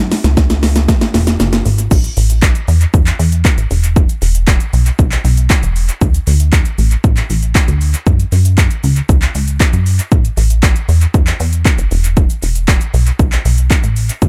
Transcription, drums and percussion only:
0.12 snare loud
0.12 open hi-hat medium
0.12 shaker medium
0.24 snare loud
0.24 closed hi-hat medium
0.24 shaker medium
0.37 kick loud
0.37 snare loud
0.37 shaker medium
0.50 snare loud
0.50 closed hi-hat medium
0.50 shaker medium
0.63 snare loud
0.63 open hi-hat medium
0.63 shaker medium
0.76 snare loud
0.76 closed hi-hat medium
0.76 shaker medium
0.89 kick loud
0.89 snare loud
0.89 shaker medium
1.01 snare loud
1.01 closed hi-hat medium
1.01 shaker medium
1.14 snare loud
1.14 open hi-hat medium
1.14 shaker medium
1.27 snare loud
1.27 closed hi-hat medium
1.27 shaker medium
1.40 snare loud
1.40 shaker medium
1.53 snare loud
1.53 closed hi-hat medium
1.53 shaker medium
1.66 open hi-hat medium
1.66 shaker medium
1.78 closed hi-hat loud
1.78 shaker loud
1.91 kick loud
1.91 crash loud
1.91 shaker medium
2.04 closed hi-hat medium
2.04 shaker medium
2.17 open hi-hat loud
2.17 shaker medium
2.30 closed hi-hat medium
2.30 shaker medium
2.42 kick loud
2.42 clap loud
2.42 shaker medium
2.55 closed hi-hat medium
2.55 shaker medium
2.68 open hi-hat medium
2.68 shaker medium
2.81 closed hi-hat medium
2.81 shaker medium
2.94 kick loud
2.94 shaker medium
3.07 clap medium
3.07 closed hi-hat medium
3.07 shaker medium
3.20 open hi-hat medium
3.20 shaker medium
3.32 closed hi-hat medium
3.32 shaker medium
3.45 kick loud
3.45 clap loud
3.45 shaker medium
3.58 closed hi-hat medium
3.58 shaker medium
3.71 open hi-hat medium
3.71 shaker medium
3.84 closed hi-hat loud
3.84 shaker loud
3.96 kick loud
3.96 shaker medium
4.09 closed hi-hat medium
4.09 shaker medium
4.22 open hi-hat medium
4.22 shaker medium
4.35 closed hi-hat medium
4.35 shaker medium
4.48 kick loud
4.48 clap loud
4.48 shaker medium
4.60 closed hi-hat medium
4.60 shaker medium
4.73 open hi-hat medium
4.73 shaker medium
4.86 closed hi-hat medium
4.86 shaker medium
4.99 kick loud
4.99 shaker medium
5.12 clap medium
5.12 closed hi-hat medium
5.12 shaker medium
5.25 open hi-hat medium
5.25 shaker medium
5.37 closed hi-hat medium
5.37 shaker medium
5.50 kick loud
5.50 clap loud
5.50 shaker medium
5.63 closed hi-hat medium
5.63 shaker medium
5.76 open hi-hat medium
5.76 shaker medium
5.89 closed hi-hat loud
5.89 shaker loud
6.01 kick loud
6.01 shaker medium
6.14 closed hi-hat medium
6.14 shaker medium
6.27 open hi-hat medium
6.27 shaker medium
6.40 closed hi-hat medium
6.40 shaker medium
6.53 kick loud
6.53 clap loud
6.53 shaker medium
6.65 closed hi-hat medium
6.65 shaker medium
6.78 open hi-hat medium
6.78 shaker medium
6.91 closed hi-hat medium
6.91 shaker medium
7.04 kick loud
7.04 shaker medium
7.17 clap medium
7.17 closed hi-hat medium
7.17 shaker medium
7.30 open hi-hat medium
7.30 shaker medium
7.43 closed hi-hat medium
7.43 shaker medium
7.55 kick loud
7.55 clap loud
7.55 shaker medium
7.68 closed hi-hat medium
7.68 shaker medium
7.81 open hi-hat medium
7.81 shaker medium
7.94 closed hi-hat loud
7.94 shaker loud
8.07 kick loud
8.07 shaker medium
8.20 closed hi-hat medium
8.20 shaker medium
8.32 open hi-hat medium
8.32 shaker medium
8.45 closed hi-hat medium
8.45 shaker medium
8.58 kick loud
8.58 clap loud
8.58 shaker medium
8.71 closed hi-hat medium
8.71 shaker medium
8.84 open hi-hat medium
8.84 shaker medium
8.96 closed hi-hat medium
8.96 shaker medium
9.09 kick loud
9.09 shaker medium
9.22 clap medium
9.22 closed hi-hat medium
9.22 shaker medium
9.35 open hi-hat medium
9.35 shaker medium
9.48 closed hi-hat medium
9.48 shaker medium
9.60 kick loud
9.60 clap loud
9.60 shaker medium
9.73 closed hi-hat medium
9.73 shaker medium
9.86 open hi-hat medium
9.86 shaker medium
9.99 closed hi-hat loud
9.99 shaker medium
10.12 kick loud
10.12 shaker medium
10.25 closed hi-hat medium
10.25 shaker medium
10.37 open hi-hat medium
10.37 shaker medium
10.50 closed hi-hat medium
10.50 shaker medium
10.63 kick loud
10.63 clap loud
10.63 shaker medium
10.76 closed hi-hat medium
10.76 shaker medium
10.89 open hi-hat medium
10.89 shaker medium
11.01 closed hi-hat medium
11.01 shaker medium
11.14 kick loud
11.14 shaker medium
11.27 clap medium
11.27 closed hi-hat medium
11.27 shaker medium
11.40 open hi-hat medium
11.40 shaker medium
11.53 closed hi-hat medium
11.53 shaker medium
11.65 kick loud
11.65 clap loud
11.65 shaker medium
11.78 closed hi-hat medium
11.78 shaker medium
11.91 open hi-hat medium
11.91 shaker medium
12.04 closed hi-hat loud
12.04 shaker loud
12.17 kick loud
12.17 shaker medium
12.30 closed hi-hat medium
12.30 shaker medium
12.43 open hi-hat medium
12.43 shaker medium
12.55 closed hi-hat medium
12.55 shaker medium
12.68 kick loud
12.68 clap loud
12.68 shaker medium
12.81 closed hi-hat medium
12.81 shaker medium
12.94 open hi-hat medium
12.94 shaker medium
13.07 closed hi-hat medium
13.07 shaker medium
13.19 kick loud
13.19 shaker medium
13.32 clap medium
13.32 closed hi-hat medium
13.32 shaker medium
13.45 open hi-hat medium
13.45 shaker medium
13.58 closed hi-hat medium
13.58 shaker medium
13.71 kick loud
13.71 clap loud
13.71 shaker medium
13.84 closed hi-hat medium
13.84 shaker medium
13.96 open hi-hat medium
13.96 shaker medium
14.09 closed hi-hat loud
14.09 shaker loud
14.22 kick loud
14.22 shaker medium

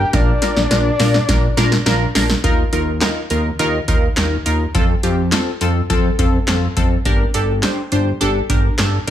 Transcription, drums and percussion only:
0.13 kick loud
0.13 snare medium
0.13 closed hi-hat medium
0.42 snare medium
0.42 closed hi-hat medium
0.57 snare medium
0.71 snare medium
0.71 closed hi-hat medium
0.99 snare medium
0.99 open hi-hat medium
1.14 snare medium
1.29 kick medium
1.29 snare medium
1.29 closed hi-hat medium
1.57 snare loud
1.57 closed hi-hat medium
1.72 snare medium
1.86 snare loud
1.86 closed hi-hat medium
2.15 snare loud
2.15 open hi-hat medium
2.30 snare loud
2.44 kick loud
2.44 closed hi-hat medium
2.73 closed hi-hat medium
3.01 snare loud
3.01 clap loud
3.01 closed hi-hat medium
3.30 closed hi-hat medium
3.59 closed hi-hat medium
3.88 kick medium
3.88 closed hi-hat medium
4.17 snare loud
4.17 clap loud
4.17 closed hi-hat medium
4.46 closed hi-hat medium
4.75 kick loud
4.75 closed hi-hat medium
5.03 closed hi-hat medium
5.32 snare loud
5.32 clap loud
5.32 closed hi-hat medium
5.61 closed hi-hat medium
5.90 kick medium
5.90 closed hi-hat medium
6.19 kick loud
6.19 closed hi-hat medium
6.48 snare loud
6.48 clap loud
6.48 closed hi-hat medium
6.77 kick medium
6.77 closed hi-hat medium
7.05 kick loud
7.05 closed hi-hat medium
7.34 closed hi-hat medium
7.63 snare loud
7.63 clap loud
7.63 closed hi-hat medium
7.92 closed hi-hat medium
8.21 closed hi-hat medium
8.50 kick loud
8.50 closed hi-hat medium
8.79 snare loud
8.79 clap loud
8.79 closed hi-hat medium

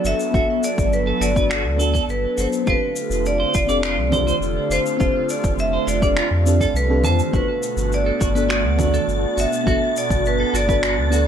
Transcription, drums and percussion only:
0.05 shaker medium
0.20 shaker soft
0.34 kick loud
0.34 shaker soft
0.64 shaker medium
0.78 kick loud
0.78 shaker soft
0.93 shaker soft
1.22 shaker medium
1.36 kick loud
1.36 shaker soft
1.51 finger snap medium
1.51 shaker soft
1.80 shaker medium
1.95 kick medium
1.95 shaker soft
2.09 shaker soft
2.38 shaker medium
2.53 shaker soft
2.67 kick loud
2.67 shaker soft
2.96 shaker medium
3.11 shaker soft
3.26 shaker soft
3.54 kick loud
3.54 shaker medium
3.69 shaker soft
3.83 finger snap medium
3.83 shaker soft
4.12 kick medium
4.12 low conga medium
4.12 shaker medium
4.28 shaker soft
4.42 shaker soft
4.71 shaker medium
4.86 shaker soft
5.00 kick loud
5.00 shaker soft
5.29 shaker medium
5.44 kick loud
5.44 shaker soft
5.59 shaker soft
5.88 shaker medium
6.02 kick loud
6.02 shaker soft
6.17 finger snap medium
6.17 shaker soft
6.47 shaker medium
6.61 kick medium
6.61 shaker soft
6.76 shaker soft
7.04 low conga medium
7.04 shaker medium
7.19 shaker soft
7.33 kick loud
7.33 shaker soft
7.63 shaker medium
7.78 shaker soft
7.92 shaker soft
8.21 kick loud
8.21 shaker medium
8.36 shaker soft
8.50 finger snap medium
8.50 shaker soft
8.79 kick medium
8.79 low conga medium
8.79 shaker medium
8.94 shaker soft
9.09 shaker soft
9.38 shaker medium
9.53 shaker soft
9.67 kick loud
9.67 shaker soft
9.97 shaker medium
10.10 kick loud
10.10 shaker soft
10.26 shaker soft
10.55 shaker medium
10.69 kick loud
10.69 shaker soft
10.83 finger snap medium
10.83 shaker soft
11.13 shaker medium

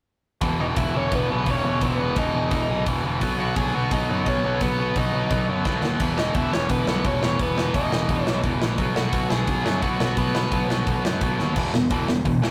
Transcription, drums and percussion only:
0.41 kick medium
0.41 open hi-hat soft
0.76 kick loud
0.76 open hi-hat medium
1.12 kick loud
1.12 open hi-hat medium
1.46 kick medium
1.46 open hi-hat medium
1.81 kick loud
1.81 open hi-hat medium
2.16 kick loud
2.16 open hi-hat medium
2.51 kick loud
2.51 open hi-hat medium
2.86 kick loud
2.86 open hi-hat soft
3.21 kick medium
3.21 open hi-hat medium
3.56 kick loud
3.56 open hi-hat soft
3.91 kick loud
3.91 open hi-hat medium
4.26 kick medium
4.26 open hi-hat soft
4.61 kick medium
4.61 open hi-hat medium
4.96 kick loud
4.96 open hi-hat medium
5.31 kick loud
5.31 open hi-hat soft
5.65 kick medium
5.65 snare medium
5.84 snare medium
6.00 kick loud
6.00 open hi-hat soft
6.00 crash medium
6.18 snare loud
6.34 kick loud
6.34 open hi-hat medium
6.53 snare loud
6.69 kick loud
6.69 open hi-hat medium
6.87 snare loud
7.04 kick loud
7.04 open hi-hat medium
7.23 snare loud
7.39 kick loud
7.39 open hi-hat medium
7.58 snare loud
7.74 kick loud
7.74 open hi-hat medium
7.92 snare loud
8.09 kick loud
8.09 open hi-hat medium
8.27 snare loud
8.43 kick loud
8.43 open hi-hat soft
8.62 snare loud
8.78 kick loud
8.78 open hi-hat soft
8.96 snare loud
9.13 kick loud
9.13 open hi-hat medium
9.30 snare loud
9.47 kick loud
9.47 open hi-hat medium
9.66 snare loud
9.82 kick loud
9.82 open hi-hat medium
10.00 snare loud
10.17 kick loud
10.17 open hi-hat medium
10.35 snare loud
10.52 kick loud
10.52 open hi-hat medium
10.70 snare loud
10.87 kick loud
10.87 open hi-hat soft
11.05 snare loud
11.21 kick loud
11.21 open hi-hat medium
11.39 snare medium
11.56 kick loud
11.56 crash medium
11.74 snare loud
11.90 kick loud
11.90 open hi-hat medium
12.08 snare loud
12.25 kick medium
12.25 open hi-hat medium
12.44 snare loud

